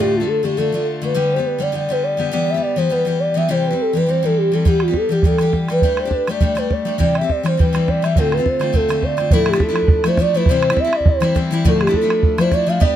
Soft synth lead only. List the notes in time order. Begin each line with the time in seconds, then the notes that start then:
0.00 G4
0.15 F4
0.27 A4
0.43 G4
0.57 A4
1.04 B4
1.33 C5
1.42 C5
1.46 B4
1.61 D5
1.76 D5
1.92 B4
2.03 D5
2.32 D5
2.50 E5
2.62 D5
2.77 C5
2.92 B4
3.09 B4
3.20 D5
3.36 E5
3.50 C5
3.67 B4
3.81 A4
3.97 B4
4.10 C5
4.25 A4
4.37 G4
4.54 A4
4.67 G4
4.82 F4
4.97 A4
5.12 G4
5.26 A4
5.71 B4
6.00 C5
6.14 B4
6.30 D5
6.43 D5
6.58 B4
6.72 D5
7.02 D5
7.17 E5
7.31 D5
7.43 C5 D5
7.60 B4
7.76 B4
7.89 D5
8.03 E5
8.18 A4
8.33 B4
8.48 C5
8.75 A4
9.04 D5
9.32 A4
9.49 G4
9.62 A4
9.92 A4
10.07 C5
10.21 D5
10.36 B4
10.49 C5
10.80 E5
10.96 D5
11.09 C5
11.68 A4
11.82 G4
11.95 A4
12.24 A4
12.40 C5
12.53 D5
12.68 F5
12.82 D5